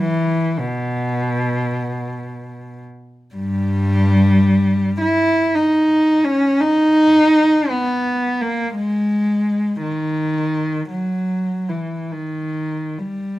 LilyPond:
\new Staff \with { instrumentName = "Cello" } { \clef bass \time 3/4 \key dis \phrygian \tempo 4 = 55 e8 b,2 r8 | <g, g>4. e'8 \tuplet 3/2 { dis'4 cis'8 } | dis'4 \tuplet 3/2 { b4 ais8 } gis4 | dis4 \tuplet 3/2 { fis4 e8 dis4 g8 } | }